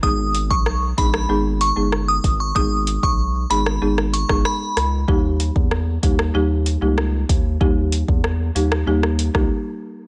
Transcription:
<<
  \new Staff \with { instrumentName = "Synth bell" } { \time 4/4 \key gis \minor \tempo 4 = 95 dis'''8 r16 cis'''16 r8 b''16 r8. cis'''16 r8 dis'''16 r16 cis'''16 | dis'''8 r16 cis'''16 r8 b''16 r8. cis'''16 r16 b''8. r16 | r1 | r1 | }
  \new Staff \with { instrumentName = "Marimba" } { \time 4/4 \key gis \minor <gis b dis' gis'>4 r8 <gis b dis' gis'>16 r16 <gis b dis' gis'>8. <gis b dis' gis'>16 r4 | <gis b dis' gis'>4 r8 <gis b dis' gis'>16 r16 <gis b dis' gis'>8. <gis b dis' gis'>16 r4 | <g ais dis' g'>4 r8 <g ais dis' g'>16 r16 <g ais dis' g'>8. <g ais dis' g'>16 r4 | <g ais dis' g'>4 r8 <g ais dis' g'>16 r16 <g ais dis' g'>8. <g ais dis' g'>16 r4 | }
  \new Staff \with { instrumentName = "Analog synth bass" } { \clef bass \time 4/4 \key gis \minor gis,,8. b,,8. ais,,8 gis,,8. g,,8. gis,,8 | gis,,8. b,,8. gis,,8 gis,,8. g,,16 r8 cis,8 | dis,8. e,8. dis,8 dis,8. cis,8. dis,8 | dis,8. e,8. dis,8 dis,8. cis,16 r4 | }
  \new DrumStaff \with { instrumentName = "Drums" } \drummode { \time 4/4 bd8 hh16 bd16 ss8 <hh bd>16 ss16 r8 hh8 ss8 <hh bd>8 | bd8 hh16 bd16 r8 hh16 ss16 r16 ss16 hh16 <bd ss>16 ss8 <hh ss>8 | bd8 hh16 bd16 ss8 <hh bd>16 ss16 r8 hh8 ss8 <hh bd>8 | bd8 hh16 bd16 ss8 hh16 ss16 r16 ss16 hh16 <bd ss>16 r4 | }
>>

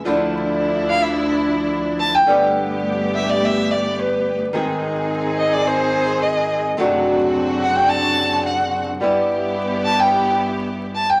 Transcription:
<<
  \new Staff \with { instrumentName = "Violin" } { \time 4/4 \key d \dorian \tempo 4 = 107 r4. f''16 e''8 r4 r16 a''16 g''16~ | g''16 r4 r16 e''16 d''16 e''8 d''8 b'8. r16 | r4. ees''16 d''16 c''4 ees''8. r16 | r4. fis''16 g''16 a''4 fis''8. r16 |
r4. a''16 g''8 r4 r16 a''16 g''16 | }
  \new Staff \with { instrumentName = "String section" } { \time 4/4 \key d \dorian <f d' e'>1 | <a b g'>1 | <c' ees' aes'>1 | <c' d' fis'>1 |
<b e' g'>1 | }
  \new Staff \with { instrumentName = "Nylon-string guitar" } { \time 4/4 \key d \dorian <d f a d' e'>1 | <d g b g'>1 | <ees aes c' ees' aes'>1 | <c fis a d' fis'>1 |
<g b e'>1 | }
  \new Staff \with { instrumentName = "Double bass" } { \clef bass \time 4/4 \key d \dorian d,1 | g,,1 | aes,,1 | fis,,1 |
g,,1 | }
>>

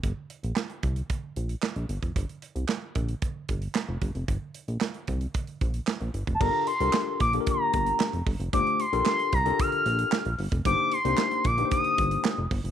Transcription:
<<
  \new Staff \with { instrumentName = "Analog synth lead" } { \time 4/4 \key g \minor \tempo 4 = 113 r1 | r1 | r2. r8. r32 a''32 | bes''8 c'''4 d'''8 bes''4. r8 |
d'''8 c'''8 c'''8 bes''8 f'''4. r8 | d'''8 c'''4 d'''8 ees'''4. r8 | }
  \new Staff \with { instrumentName = "Tine electric piano" } { \time 4/4 \key g \minor r1 | r1 | r1 | <d' f' g' a' bes'>8 r16 <d' f' g' a' bes'>8. r16 <bes d' f' g' a' bes'>4. r8. |
<a d' f' g' c''>8 r16 <d' f' g' a' bes'>8. r16 <d' f' g' a' bes'>4. r8. | <bes d' ees' g' c''>8 r16 <bes d' ees' g' c''>8. r16 <bes d' ees' g' b' c''>4. r8. | }
  \new Staff \with { instrumentName = "Analog synth bass" } { \clef bass \time 4/4 \key g \minor g,,16 r8 bes,,16 r8 c,8 r8 bes,,8 r16 bes,,16 g,,16 f,,16 | g,,16 r8 c,16 r8 bes,,8 r8 g,,8 r16 f,,16 g,,16 f,,16 | g,,16 r8 bes,,16 r8 c,8 r8 bes,,8 r16 bes,,16 g,,16 f,,16 | g,,16 r8 c,16 r8 bes,,8 r8 g,,8 r16 f,,16 g,,16 f,,16 |
g,,16 r8 bes,,16 r8 c,8 r8 bes,,8 r16 bes,,16 g,,16 f,,16 | g,,16 r8 c,16 r8 bes,,8 r8 g,,8 r16 f,,16 g,,16 f,,16 | }
  \new DrumStaff \with { instrumentName = "Drums" } \drummode { \time 4/4 <hh bd>8 hh16 hh16 <hc sn>16 hh16 <hh bd>16 hh16 <hh bd>8 hh16 hh16 <hc sn>16 hh16 hh16 <hh bd>16 | <hh bd>16 hh16 hh16 hh16 <hc sn>8 <hh bd>16 hh16 <hh bd>8 <hh bd>16 hh16 <hc sn>8 <hh bd>16 hh16 | <hh bd>8 hh16 hh16 <hc sn>16 hh16 <hh bd>16 hh16 <hh bd>16 hh16 <hh bd>16 hh16 <hc sn>16 hh16 hh16 <hh bd>16 | <cymc bd>8 hh16 hh16 <hc sn>8 <hh bd>16 hh16 <hh bd>8 <hh bd>16 hh16 <hc sn>16 hh16 <hho bd>16 hh16 |
<hh bd>16 hh16 hh16 hh16 <hc sn>16 hh16 <hh bd>16 hh16 <hh bd>16 hh16 hh16 hh16 <hc sn>16 hh16 hho16 <hh bd>16 | <hh bd>8 hh16 hh16 <hc sn>16 hh16 <hh bd>16 hh16 <hh bd>16 hh16 <hh bd>16 hh16 <hc sn>8 <hho bd>16 hh16 | }
>>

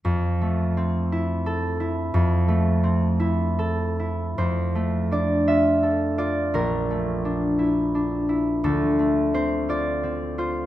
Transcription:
\new Staff \with { instrumentName = "Harp" } { \time 6/8 \key f \major \tempo 4. = 57 << { r2. | r2. | c''4 d''8 e''4 d''8 | bes'2. |
a'4 c''8 d''4 c''8 | } \\ { f,8 a8 c'8 e'8 a'8 e'8 | f,8 a8 c'8 e'8 a'8 e'8 | f,8 a8 d'8 f'8 a'8 f'8 | bes,,8 a8 d'8 e'8 d'8 e'8 |
d,8 a8 c'8 f'8 c'8 f'8 | } >> }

